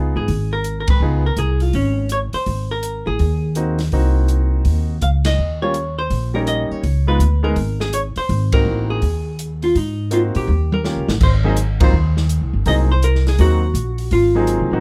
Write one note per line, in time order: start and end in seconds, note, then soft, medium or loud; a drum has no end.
0.00 0.12 C#2 medium
0.00 0.26 B3 medium
0.00 0.26 D#4 medium
0.00 0.26 F4 medium
0.00 0.27 G#4 medium
0.15 0.27 G#2 medium
0.15 0.53 G#4 medium
0.28 0.84 G#1 medium
0.28 kick soft
0.28 open hi-hat soft
0.53 0.78 A#4 medium
0.64 closed hi-hat soft
0.80 0.89 A#4 medium
0.88 1.00 G#2 medium
0.88 1.23 B4 medium
0.88 kick medium
0.88 ride medium
1.00 1.34 C#2 medium
1.00 1.23 B3 medium
1.00 1.23 D#4 medium
1.00 1.23 F4 soft
1.00 1.23 G#4 medium
1.26 1.39 A#4 medium
1.37 1.71 C2 medium
1.37 1.61 G#4 medium
1.37 closed hi-hat soft
1.60 1.74 F4 medium
1.60 open hi-hat soft
1.73 2.29 G#1 medium
1.73 2.08 C#4 medium
1.73 kick soft
1.73 open hi-hat soft
2.09 2.18 C#5 medium
2.09 closed hi-hat soft
2.33 2.68 C5 medium
2.33 muted upright bass stroke soft
2.33 open hi-hat soft
2.46 3.02 G#1 medium
2.46 kick soft
2.46 open hi-hat soft
2.71 3.08 A#4 medium
2.83 closed hi-hat soft
3.07 3.19 A1 medium
3.07 5.07 G#4 medium
3.19 3.88 D#2 medium
3.19 kick soft
3.19 open hi-hat soft
3.55 3.77 A#3 medium
3.55 3.77 C4 medium
3.55 3.77 D#4 soft
3.55 3.77 F#4 medium
3.55 closed hi-hat soft
3.79 snare soft
3.79 open hi-hat soft
3.92 4.61 C2 medium
3.92 4.94 A#3 medium
3.92 4.94 C4 medium
3.92 4.94 D#4 medium
3.92 4.94 F#4 medium
3.92 kick soft
3.92 open hi-hat soft
4.28 closed hi-hat soft
4.65 4.99 D#2 medium
4.65 kick soft
4.65 open hi-hat soft
5.01 5.35 C#2 medium
5.01 5.09 F5 medium
5.01 closed hi-hat soft
5.25 5.62 D#5 medium
5.25 snare medium
5.25 ride medium
5.38 6.07 D#2 medium
5.62 5.73 G3 medium
5.62 5.73 A#3 medium
5.62 5.74 C#4 medium
5.62 5.74 F4 medium
5.62 5.95 C#5 medium
5.74 closed hi-hat soft
5.99 6.35 C5 medium
6.10 6.66 A#1 medium
6.10 kick soft
6.10 open hi-hat soft
6.34 6.81 G3 medium
6.34 6.81 A#3 medium
6.34 6.81 C#4 medium
6.34 6.81 D#4 medium
6.34 6.40 A#4 medium
6.47 6.71 D#5 medium
6.47 closed hi-hat soft
6.71 7.07 C#5 medium
6.71 muted upright bass stroke soft
6.83 7.17 C#2 medium
6.83 kick soft
6.83 open hi-hat soft
7.07 7.18 G#3 medium
7.07 7.19 B3 medium
7.07 7.19 D#4 medium
7.07 7.19 F4 medium
7.07 7.45 B4 medium
7.19 7.53 D2 medium
7.19 closed hi-hat soft
7.43 7.54 G#3 medium
7.43 7.55 B3 medium
7.43 7.55 D#4 medium
7.43 7.55 G#4 medium
7.43 7.81 A#4 medium
7.56 8.12 G#1 medium
7.56 kick soft
7.56 open hi-hat soft
7.80 7.92 G#4 medium
7.80 snare soft
7.93 8.00 C#5 medium
7.93 closed hi-hat soft
8.16 8.54 C5 medium
8.16 muted upright bass stroke soft
8.16 open hi-hat soft
8.29 8.63 G#1 medium
8.29 kick soft
8.29 open hi-hat soft
8.52 8.99 A#3 medium
8.52 9.00 C4 soft
8.52 9.00 D#4 medium
8.52 9.00 F#4 medium
8.52 8.90 A#4 medium
8.52 kick medium
8.52 ride medium
8.65 8.99 A1 medium
8.90 9.64 G#4 medium
9.02 9.71 D#2 medium
9.02 kick soft
9.02 open hi-hat soft
9.39 closed hi-hat soft
9.62 9.77 F4 medium
9.62 open hi-hat soft
9.75 10.31 G#2 medium
9.75 10.13 D#4 medium
9.75 kick soft
9.75 open hi-hat soft
10.11 10.47 A#3 medium
10.11 10.48 C4 medium
10.11 10.48 D#4 medium
10.11 10.19 F4 medium
10.11 10.48 F#4 medium
10.11 closed hi-hat soft
10.35 10.47 A#2 medium
10.35 10.81 G4 medium
10.35 open hi-hat soft
10.47 10.93 D#2 medium
10.47 high tom soft
10.72 11.23 A#4 medium
10.72 high tom medium
10.84 11.05 A#3 medium
10.84 11.05 C#4 soft
10.84 11.06 F4 soft
10.84 11.06 G4 medium
10.84 snare medium
10.96 11.07 C#2 soft
11.08 11.19 A1 medium
11.08 snare medium
11.21 11.90 G#1 medium
11.21 11.29 C5 loud
11.21 kick medium
11.21 crash medium
11.44 11.55 F#3 medium
11.44 11.55 A#3 medium
11.44 11.55 C4 medium
11.44 11.56 D#4 medium
11.44 11.56 G#4 medium
11.44 11.81 D#5 loud
11.57 closed hi-hat medium
11.80 11.92 F#3 medium
11.80 11.92 A#3 medium
11.80 11.92 C4 medium
11.80 11.92 D#4 medium
11.80 11.92 F4 medium
11.80 12.51 C5 medium
11.80 kick medium
11.80 ride medium
11.93 12.38 D#2 medium
12.17 snare soft
12.29 closed hi-hat medium
12.42 12.53 C2 medium
12.53 12.65 G1 medium
12.66 13.35 C2 medium
12.66 12.87 F#3 medium
12.66 12.87 A#3 medium
12.66 12.87 C4 medium
12.66 12.87 D#4 medium
12.66 12.88 G#4 medium
12.66 12.74 D#5 loud
12.66 kick soft
12.66 open hi-hat soft
12.92 13.04 C5 medium
13.02 13.27 A#4 medium
13.02 closed hi-hat medium
13.15 snare soft
13.27 13.40 G#4 medium
13.27 snare soft
13.27 open hi-hat soft
13.38 13.72 D#2 medium
13.38 13.60 F#3 medium
13.38 13.60 A#3 medium
13.38 13.60 C4 medium
13.38 13.61 D#4 medium
13.38 13.61 F#4 medium
13.38 14.12 F#4 medium
13.38 kick soft
13.38 open hi-hat soft
13.74 14.08 A#1 medium
13.74 closed hi-hat medium
13.98 open hi-hat soft
14.11 14.56 G#1 medium
14.11 14.80 F4 medium
14.11 kick soft
14.11 open hi-hat soft
14.35 14.69 F#3 medium
14.35 14.69 A#3 medium
14.35 14.69 C4 medium
14.35 14.70 D#4 medium
14.35 14.70 G#4 medium
14.47 closed hi-hat medium
14.59 14.71 C2 medium
14.71 14.80 A1 medium
14.71 14.80 F#3 medium
14.71 14.80 A#3 medium
14.71 14.80 C4 medium
14.71 14.80 D#4 medium
14.71 14.80 F#4 medium